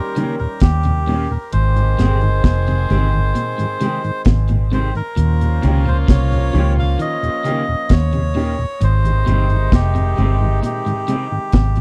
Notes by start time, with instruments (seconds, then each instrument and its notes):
Already playing: horn section D#3 G3 C#4 G4, melodica A#4
0.16 clean electric guitar C#3 D#3 A#3 C#4 G4, tonewheel organ G3 C#4 D#4, closed hi-hat
0.39 tonewheel organ D#2 A#2, melodica A#4
0.60 fingered electric bass D#2, melodica G4, kick, snare, closed hi-hat
0.83 tonewheel organ D#2 A#2, clean electric guitar C3, closed hi-hat
1.07 clean electric guitar A#2 D#3 A#3 C#4 G4, tonewheel organ G3 C#4 D#4, open hi-hat
1.31 tonewheel organ D#2 A#2, melodica A#4, muted clean electric guitar stroke
1.53 fingered electric bass G#1, clean electric guitar G#2, horn section D#3 G#3 C4 G#4, melodica C5, closed hi-hat
1.76 tonewheel organ G#2 D#3, closed hi-hat
1.99 fingered electric bass G1, clean electric guitar A#2 D#3 G#3 C4 G4, tonewheel organ G#3 C4 G4, snare, closed hi-hat
2.21 tonewheel organ G#2 D#3, closed hi-hat
2.44 fingered electric bass F1, kick, snare, closed hi-hat
2.67 tonewheel organ G#2 D#3, clean electric guitar C3, closed hi-hat
2.89 fingered electric bass G1, clean electric guitar C3 D#3 G#3 C4 G4, tonewheel organ G#3 C4 G4, closed hi-hat
3.14 tonewheel organ G#2 D#3
3.35 clean electric guitar A#2, closed hi-hat
3.58 clean electric guitar G#2, tonewheel organ G#2 D#3, closed hi-hat
3.81 clean electric guitar C3 D#3 G#3 C4 G4, tonewheel organ G#3 C4 G4, closed hi-hat
4.04 tonewheel organ G#2 D#3, closed hi-hat
4.25 fingered electric bass G#1, clean electric guitar C3, kick, snare, closed hi-hat
4.48 tonewheel organ G#2 D#3, clean electric guitar A#2, closed hi-hat
4.72 clean electric guitar C3 D#3 G#3 C4 G4, tonewheel organ G#3 C4 G4, melodica C5, closed hi-hat
4.95 tonewheel organ G#2 D#3, melodica A#4, closed hi-hat
5.16 fingered electric bass D#2, clean electric guitar A#2, horn section F3 A#3 C#4 F4, closed hi-hat
5.41 tonewheel organ D#2 A#2, closed hi-hat
5.62 fingered electric bass C#2, clean electric guitar C3 D#3 A#3 C#4 G4, tonewheel organ C#4 D#4 G4, closed hi-hat
5.86 tonewheel organ D#2 A#2, clean electric guitar C#3, melodica C5
6.08 fingered electric bass C2, clean electric guitar C#3, melodica C#5, kick, snare, closed hi-hat
6.31 tonewheel organ D#2 A#2, closed hi-hat
6.53 fingered electric bass C#2, clean electric guitar D#3 F3 A#3 C#4 G4, tonewheel organ C#4 D#4 G4, closed hi-hat
6.77 tonewheel organ D#2 A#2, melodica F5
6.99 clean electric guitar D#3, melodica D#5, closed hi-hat
7.23 tonewheel organ D#2 A#2, closed hi-hat
7.44 clean electric guitar C#3 D#3 A#3 C#4 G4, tonewheel organ C#4 D#4 G4, closed hi-hat
7.68 tonewheel organ D#2 A#2
7.89 fingered electric bass D#2, melodica C#5, kick, snare, closed hi-hat
8.13 tonewheel organ D#2 A#2, clean electric guitar C3, closed hi-hat
8.35 clean electric guitar A#2 D#3 A#3 C#4 G4, tonewheel organ C#4 D#4 G4, open hi-hat
8.59 tonewheel organ D#2 A#2, muted clean electric guitar stroke
8.81 fingered electric bass G#1, clean electric guitar G#2, horn section C3 D#3 G#3 D#4, melodica C5, closed hi-hat
9.05 tonewheel organ G#2 D#3, closed hi-hat
9.26 fingered electric bass G1, clean electric guitar A#2 G3 C4 D#4 G4, tonewheel organ G#3 C4 G4, closed hi-hat
9.49 tonewheel organ G#2 D#3, closed hi-hat
9.72 fingered electric bass F1, melodica G4, kick, snare, closed hi-hat
9.95 tonewheel organ G#2 D#3, clean electric guitar C3, closed hi-hat
10.17 fingered electric bass G1, clean electric guitar C3 G3 C4 D#4 G4, tonewheel organ G#3 C4 G4, closed hi-hat
10.41 tonewheel organ G#2 D#3
10.63 clean electric guitar A#2, melodica G4, closed hi-hat
10.86 tonewheel organ G#2 D#3, clean electric guitar G#2, closed hi-hat
11.08 clean electric guitar C3 G3 C4 D#4 G4, tonewheel organ G#3 C4 G4, closed hi-hat
11.32 tonewheel organ G#2 D#3
11.52 fingered electric bass G#1, clean electric guitar C3, kick, snare, closed hi-hat
11.76 tonewheel organ G#2 D#3, clean electric guitar A#2, closed hi-hat